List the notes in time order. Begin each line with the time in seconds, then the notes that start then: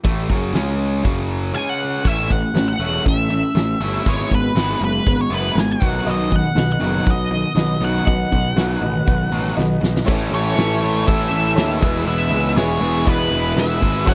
0.04 A1 A2 E3 A3, kick, closed hi-hat
0.30 F#1 F#2 C#3 F#3, kick
0.54 C#2 C#3 G#3 C#4, snare, closed hi-hat
1.03 F#1 F#2 C#3 F#3, kick, closed hi-hat
1.18 snare
1.54 C#3 G#3 C#4 G#5
1.69 F#5
2.04 A1 A3 C#4 E4 E5, kick, crash
2.30 A3 C#4 F#5, kick, closed hi-hat
2.54 A1 A3 C#4, snare, closed hi-hat
2.68 F#5
2.79 E1 A3 C#4 E4, closed hi-hat
3.05 A1 A3 C#4 E5, kick, closed hi-hat
3.30 A3 C#4, closed hi-hat
3.55 A1 A3 C#4, snare, closed hi-hat
3.80 G1 A3 C#4 E4, closed hi-hat
4.06 G#1 G#3 B3 E4 C#5, kick, closed hi-hat
4.31 G#1 G#3 B3 B4, kick, closed hi-hat
4.55 G#1 G#3 B3 E4, snare, closed hi-hat
4.70 snare
4.81 F#1 G#3 B3 B4, closed hi-hat
5.07 G#1 G#3 B3, kick, closed hi-hat
5.21 C#5
5.30 F#1 G#3 B3 E4 B4, closed hi-hat
5.55 G#1 G#3 B3, snare, closed hi-hat
5.60 G#5
5.72 F#5
5.80 B1 B2 D#3 F#3, kick, closed hi-hat
6.05 B1 B2 D#3 F#3 F#4 B4 D#5, closed hi-hat
6.10 D#5
6.30 B2 D#3, kick, closed hi-hat
6.36 F#5
6.55 B1 B2 D#3 F#4 B4 D#5, snare, closed hi-hat
6.72 F#5
6.80 F#1 B2 D#3 F#3 F#4 B4 D#5, closed hi-hat
7.06 B1 B2 D#3 F#4 B4 F#5, kick, closed hi-hat
7.10 D#5
7.31 B2 D#3, closed hi-hat
7.55 B1 B2 D#3 F#4 B4 D#5, snare, closed hi-hat
7.80 B1 B2 D#3 F#3, closed hi-hat
7.84 F#5
8.06 B1 B2 D#3 F#4 B4 D#5, kick, closed hi-hat
8.32 B1 B2 D#3, kick, closed hi-hat
8.56 B1 B2 D#3 F#3 F#4 B4 F#5, snare, closed hi-hat
8.81 A1 B2 D#3 F#4 B4 D#5, closed hi-hat
9.05 B1 B2 D#3 F#4 B4 F#5, kick, closed hi-hat
9.32 A1 B2 D#3 F#3, closed hi-hat
9.56 B1 B2 D#3 F#4 B4 D#5, snare
9.81 B1 B2 D#3, snare
9.96 snare
10.04 A1 A2 E3 A3 C#4 E4 A4 C#5, kick, crash
10.21 closed hi-hat
10.32 A1 A3 C#4 E4 A4 C#5, closed hi-hat
10.46 closed hi-hat
10.56 A1 E3 A3 C#4 E4 A4 E5, snare, closed hi-hat
10.71 closed hi-hat
10.81 A2 E3 A3 C#4 E4, snare, closed hi-hat
10.96 closed hi-hat
11.05 A1 A2 E3 A3 C#4 E4 A4 C#5 E5, kick, closed hi-hat
11.21 closed hi-hat
11.31 A1 A2 E3 A3 C#4 E4, closed hi-hat
11.55 D#2 E3 A3 C#4 E4 A4 C#5, snare, closed hi-hat
11.80 E1 E2 B2 E3 G#3 B3 E4 G#4 B4, kick, closed hi-hat
11.96 closed hi-hat
12.05 E1 E2 B2 E3 G#3 B3 E4 B4 E5, closed hi-hat
12.20 closed hi-hat
12.30 C#2 E3 G#3 B3 E4, closed hi-hat
12.45 closed hi-hat
12.55 E1 E3 G#3 B3 E4 G#4 B4 C#5, snare, closed hi-hat
12.69 closed hi-hat
12.81 E1 E2 B2 E3 G#3 B3 E4, closed hi-hat
12.95 closed hi-hat
13.05 E1 E3 G#3 B3 E4 G#4 B4, kick, closed hi-hat
13.31 E1 E2 B2 E3 G#3 B3 E4, closed hi-hat
13.45 closed hi-hat
13.56 E1 E3 G#3 B3 E4 G#4 B4 E5, snare, closed hi-hat
13.71 snare
13.81 G#1 E3 G#3 B3 E4, kick, closed hi-hat
14.05 F#1 F#2 C#3 F#3 C#4 F#4 A4 C#5 F#5, kick, crash
14.09 A3 F#4